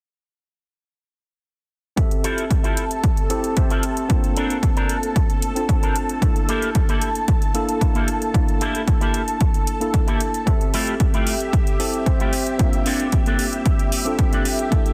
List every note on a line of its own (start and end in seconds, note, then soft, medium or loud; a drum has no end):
1.96 3.27 C4 medium
1.96 3.27 G4 medium
1.96 10.48 A4 medium
1.96 3.28 A4 medium
1.96 3.27 E5 medium
1.96 10.48 A5 medium
1.96 kick loud
1.96 closed hi-hat medium
2.11 closed hi-hat soft
2.24 2.44 E4 loud
2.24 2.44 F4 medium
2.24 2.44 G4 medium
2.24 2.44 A4 loud
2.24 closed hi-hat medium
2.38 closed hi-hat soft
2.51 kick medium
2.51 closed hi-hat medium
2.64 2.84 E4 medium
2.64 2.84 F4 medium
2.64 2.84 G4 medium
2.64 2.84 A4 medium
2.64 closed hi-hat soft
2.77 closed hi-hat medium
2.91 closed hi-hat soft
3.04 muted clean electric guitar stroke soft
3.04 kick loud
3.04 closed hi-hat medium
3.17 closed hi-hat soft
3.30 3.53 C4 medium
3.30 3.54 E4 medium
3.30 3.54 G4 medium
3.30 3.54 A4 medium
3.30 closed hi-hat medium
3.44 closed hi-hat soft
3.56 4.07 C4 medium
3.56 4.07 G4 medium
3.56 4.07 C5 medium
3.56 4.07 E5 medium
3.56 muted clean electric guitar stroke loud
3.56 kick medium
3.56 closed hi-hat medium
3.70 3.83 E4 medium
3.70 3.83 F4 medium
3.70 3.83 G4 medium
3.70 3.83 A4 medium
3.70 closed hi-hat soft
3.83 closed hi-hat medium
3.97 muted clean electric guitar stroke soft
3.97 closed hi-hat soft
4.09 5.54 A#3 medium
4.09 5.53 C4 medium
4.09 5.53 D4 medium
4.09 5.53 F4 medium
4.09 kick loud
4.09 closed hi-hat medium
4.24 closed hi-hat soft
4.36 4.57 C4 medium
4.36 4.57 D4 medium
4.36 4.57 A4 medium
4.36 4.57 A#4 loud
4.36 closed hi-hat medium
4.50 closed hi-hat soft
4.63 kick medium
4.63 closed hi-hat medium
4.76 4.96 C4 medium
4.76 4.96 D4 medium
4.76 4.96 A4 medium
4.76 4.96 A#4 medium
4.76 closed hi-hat soft
4.89 closed hi-hat medium
5.03 closed hi-hat soft
5.16 kick loud
5.16 closed hi-hat medium
5.30 closed hi-hat soft
5.42 closed hi-hat medium
5.55 6.19 C4 medium
5.55 6.19 D4 medium
5.55 6.19 F4 medium
5.55 6.20 A5 medium
5.55 closed hi-hat soft
5.69 muted clean electric guitar stroke loud
5.69 kick loud
5.69 closed hi-hat medium
5.82 5.96 C4 medium
5.82 5.96 D4 medium
5.82 5.96 A4 medium
5.82 5.96 A#4 medium
5.82 closed hi-hat soft
5.96 closed hi-hat medium
6.09 muted clean electric guitar stroke soft
6.09 closed hi-hat soft
6.21 7.51 A#3 medium
6.21 7.52 D4 medium
6.21 7.52 E4 medium
6.21 7.52 A4 medium
6.21 kick loud
6.21 closed hi-hat medium
6.36 closed hi-hat soft
6.48 6.69 A#3 loud
6.48 6.69 E4 medium
6.48 6.69 G4 medium
6.48 6.69 A4 loud
6.48 closed hi-hat medium
6.62 closed hi-hat soft
6.75 kick loud
6.75 closed hi-hat medium
6.89 7.09 A#3 medium
6.89 7.09 E4 medium
6.89 7.09 G4 medium
6.89 7.09 A4 medium
6.89 closed hi-hat soft
7.01 closed hi-hat medium
7.15 closed hi-hat soft
7.28 muted clean electric guitar stroke soft
7.28 kick loud
7.28 closed hi-hat medium
7.42 closed hi-hat soft
7.54 7.78 A#3 medium
7.54 7.78 D4 medium
7.54 7.78 E4 medium
7.54 7.79 A4 medium
7.54 closed hi-hat medium
7.69 closed hi-hat soft
7.81 8.31 A#3 medium
7.81 8.32 D4 medium
7.81 8.32 E4 medium
7.81 muted clean electric guitar stroke medium
7.81 kick loud
7.81 closed hi-hat medium
7.95 8.08 A#3 medium
7.95 8.08 E4 medium
7.95 8.08 G4 medium
7.95 8.08 A4 medium
7.95 closed hi-hat soft
8.08 closed hi-hat medium
8.21 muted clean electric guitar stroke soft
8.21 closed hi-hat soft
8.34 9.77 A#3 medium
8.34 9.78 D4 medium
8.34 9.78 E4 medium
8.34 kick loud
8.34 closed hi-hat medium
8.48 closed hi-hat soft
8.61 8.81 A#3 medium
8.61 8.81 E4 medium
8.61 8.81 G4 medium
8.61 8.81 A4 loud
8.61 closed hi-hat medium
8.75 closed hi-hat soft
8.88 kick medium
8.88 closed hi-hat medium
9.01 9.21 A#3 medium
9.01 9.21 E4 medium
9.01 9.21 G4 medium
9.01 9.21 A4 medium
9.01 closed hi-hat soft
9.14 closed hi-hat medium
9.28 closed hi-hat soft
9.40 muted clean electric guitar stroke soft
9.40 kick loud
9.40 closed hi-hat medium
9.54 closed hi-hat soft
9.67 closed hi-hat medium
9.80 10.43 A#3 medium
9.80 10.44 D4 medium
9.80 10.44 E4 medium
9.80 10.44 A4 medium
9.80 closed hi-hat soft
9.93 muted clean electric guitar stroke loud
9.93 kick loud
9.93 closed hi-hat medium
10.07 10.20 A#3 medium
10.07 10.20 E4 medium
10.07 10.20 G4 medium
10.07 10.21 A4 medium
10.07 closed hi-hat soft
10.20 closed hi-hat medium
10.34 muted clean electric guitar stroke soft
10.34 closed hi-hat soft
10.46 11.76 C4 medium
10.46 14.93 G4 medium
10.46 11.77 G4 medium
10.46 11.77 A4 medium
10.46 14.93 E5 medium
10.46 11.76 E5 medium
10.46 kick loud
10.46 closed hi-hat medium
10.61 closed hi-hat soft
10.73 10.94 A3 medium
10.73 10.94 E4 medium
10.73 10.94 F4 medium
10.73 10.94 G4 loud
10.73 open hi-hat loud
10.87 closed hi-hat soft
11.00 kick medium
11.00 closed hi-hat medium
11.13 11.33 A3 medium
11.13 11.34 E4 medium
11.13 11.34 F4 medium
11.13 11.34 G4 medium
11.13 closed hi-hat soft
11.27 open hi-hat medium
11.40 closed hi-hat soft
11.53 muted clean electric guitar stroke soft
11.53 kick loud
11.53 closed hi-hat medium
11.67 closed hi-hat soft
11.79 12.03 C4 medium
11.79 12.03 E4 medium
11.79 12.03 G4 medium
11.79 12.04 A4 medium
11.79 open hi-hat medium
11.94 closed hi-hat soft
12.06 12.56 C4 medium
12.06 12.56 G4 medium
12.06 12.57 C5 medium
12.06 12.56 E5 medium
12.06 muted clean electric guitar stroke loud
12.06 kick loud
12.06 closed hi-hat medium
12.20 12.33 A3 medium
12.20 12.33 E4 medium
12.20 12.33 F4 medium
12.20 12.33 G4 medium
12.20 closed hi-hat soft
12.33 open hi-hat loud
12.46 muted clean electric guitar stroke soft
12.46 closed hi-hat soft
12.58 14.03 A#3 medium
12.58 14.02 C4 medium
12.58 14.02 D4 medium
12.58 14.03 F4 medium
12.58 kick loud
12.58 closed hi-hat medium
12.73 closed hi-hat soft
12.86 13.06 A#3 medium
12.86 13.06 C4 medium
12.86 13.06 D4 loud
12.86 13.06 A4 loud
12.86 open hi-hat medium
13.00 closed hi-hat soft
13.12 kick medium
13.12 closed hi-hat medium
13.26 13.46 A#3 medium
13.26 13.46 C4 medium
13.26 13.46 D4 medium
13.26 13.46 A4 medium
13.26 closed hi-hat soft
13.39 open hi-hat medium
13.53 closed hi-hat soft
13.65 muted clean electric guitar stroke soft
13.65 kick loud
13.65 closed hi-hat medium
13.79 closed hi-hat soft
13.92 open hi-hat medium
14.05 14.68 C4 medium
14.05 14.69 D4 medium
14.05 14.69 F4 medium
14.05 14.69 A4 medium
14.05 closed hi-hat soft
14.19 muted clean electric guitar stroke loud
14.19 kick medium
14.19 closed hi-hat medium
14.32 14.45 A#3 medium
14.32 14.45 C4 medium
14.32 14.46 D4 medium
14.32 14.46 A4 medium
14.32 closed hi-hat soft
14.45 open hi-hat medium
14.59 muted clean electric guitar stroke soft
14.59 closed hi-hat soft
14.71 14.93 A#3 medium
14.71 14.93 D4 medium
14.71 14.93 E4 medium
14.71 14.93 A4 medium
14.71 kick loud
14.71 closed hi-hat medium
14.86 closed hi-hat soft